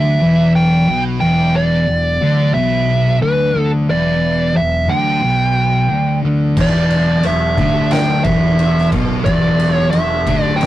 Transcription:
0.00 0.16 D2 loud
0.00 0.19 D3 loud
0.00 10.66 E3 medium
0.00 10.66 F#3 loud
0.00 6.53 B3 medium
0.00 0.51 E5 loud
0.19 0.83 E1 medium
0.19 0.86 E2 loud
0.56 1.02 G5 loud
0.86 1.18 B1 loud
0.86 1.19 B2 loud
1.20 1.84 E1 medium
1.20 1.86 E2 loud
1.20 1.55 G5 loud
1.56 2.54 D5 loud
1.87 2.19 E1 medium
1.87 2.14 E2 medium
2.21 2.52 D2 loud
2.21 2.53 D3 loud
2.53 3.18 B1 loud
2.53 3.20 B2 loud
2.53 3.18 E5 loud
3.21 3.54 D2 loud
3.21 3.53 D3 loud
3.21 3.69 B4 medium
3.54 3.87 D2 loud
3.54 3.87 D3 loud
3.58 3.89 D3 loud
3.87 4.52 E1 medium
3.87 4.52 E2 loud
3.87 4.53 D5 loud
4.54 4.87 E1 medium
4.54 4.82 E2 medium
4.54 4.91 E5 loud
4.87 5.21 D2 loud
4.87 5.21 D3 loud
4.87 6.20 G5 medium
5.21 5.86 B1 loud
5.21 5.88 B2 loud
5.88 6.22 D2 medium
5.88 6.21 D3 loud
6.23 6.55 D2 loud
6.23 6.56 D3 loud
6.56 7.20 E1 medium
6.56 7.23 E2 loud
6.56 10.66 B3 medium
6.56 kick loud
6.56 crash loud
6.61 7.22 D5 loud
6.90 ride medium
7.23 7.56 E1 medium
7.23 7.51 E2 medium
7.23 7.94 E5 loud
7.23 ride loud
7.57 8.21 D2 loud
7.57 8.23 D3 loud
7.57 kick loud
7.57 ride medium
7.91 8.26 G5 loud
7.91 snare loud
7.91 ride loud
8.24 8.88 E1 medium
8.24 8.91 E2 loud
8.24 8.88 E5 medium
8.24 kick loud
8.24 ride medium
8.59 ride loud
8.78 snare soft
8.91 9.24 B1 loud
8.91 9.24 B2 loud
8.91 kick loud
8.91 ride medium
9.25 9.89 E1 medium
9.25 9.91 E2 loud
9.25 9.74 D5 medium
9.25 kick loud
9.25 ride loud
9.59 ride medium
9.74 9.90 C#5 medium
9.91 10.24 E1 medium
9.91 10.20 E2 medium
9.91 10.44 E5 medium
9.91 ride loud
10.25 10.66 D2 loud
10.25 10.66 D3 loud
10.25 kick loud
10.25 ride medium
10.44 10.61 D5 medium
10.56 10.66 G5 loud
10.61 snare loud
10.61 ride loud

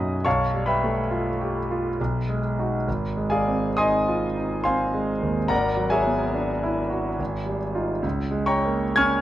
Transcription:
0.00 0.22 B1 soft
0.00 0.26 F#2 soft
0.00 0.15 F#3 soft
0.00 0.28 B3 soft
0.00 0.28 D#4 soft
0.00 0.28 F#4 soft
0.00 0.28 G#4 soft
0.00 0.21 D#5 soft
0.00 0.28 F#5 medium
0.00 0.21 G#5 soft
0.00 0.28 B5 medium
0.00 0.28 D#6 medium
0.00 0.28 F#6 medium
0.25 1.95 B1 soft
0.25 0.64 C#5 soft
0.25 0.65 F5 medium
0.25 0.65 A5 soft
0.25 0.67 C#6 medium
0.54 0.99 G3 soft
0.66 2.39 B4 soft
0.66 2.39 E5 soft
0.66 2.39 G5 soft
0.66 2.42 B5 medium
0.83 1.29 A3 soft
1.11 1.58 F4 soft
1.41 1.88 G4 soft
1.71 2.00 F4 soft
2.01 2.85 B1 soft
2.29 2.75 G#3 soft
2.59 2.84 D#4 soft
2.59 2.85 F#4 soft
2.88 5.47 G#1 soft
3.17 3.68 G#3 soft
3.30 3.76 G#4 soft
3.30 3.76 D5 soft
3.30 3.75 F5 soft
3.30 3.77 G#5 medium
3.47 3.97 C4 soft
3.77 4.26 D#4 soft
3.77 4.62 D#5 medium
3.77 4.62 G#5 medium
3.77 4.61 C6 medium
3.77 4.65 D#6 medium
4.08 4.55 F4 soft
4.37 4.83 D#4 soft
4.64 5.11 C4 soft
4.64 5.46 C5 soft
4.64 5.46 F5 soft
4.64 5.46 G#5 soft
4.64 5.49 C6 medium
4.94 5.39 G#3 soft
5.22 5.50 D#2 soft
5.48 7.15 G#1 soft
5.48 5.89 A#4 medium
5.48 5.89 D5 soft
5.48 5.89 F#5 medium
5.48 5.91 A#5 medium
5.77 6.22 F#3 soft
5.90 7.58 G#4 soft
5.90 7.57 C#5 soft
5.90 7.57 E5 soft
5.90 7.61 G#5 medium
6.06 6.51 B3 soft
6.34 6.79 D4 soft
6.63 7.08 E4 soft
6.90 7.19 F#4 soft
7.19 8.01 G#1 soft
7.46 7.92 G3 soft
7.75 8.01 D#4 soft
7.75 8.01 F4 soft
8.02 9.21 C#2 soft
8.31 8.84 G#3 soft
8.46 8.93 C#5 soft
8.46 8.93 G5 medium
8.46 8.93 A#5 soft
8.46 8.96 C#6 medium
8.65 9.16 A#3 soft
8.96 9.21 C#4 soft
8.96 9.21 G#5 medium
8.96 9.21 C#6 medium
8.96 9.21 F6 medium
8.96 9.21 G#6 medium

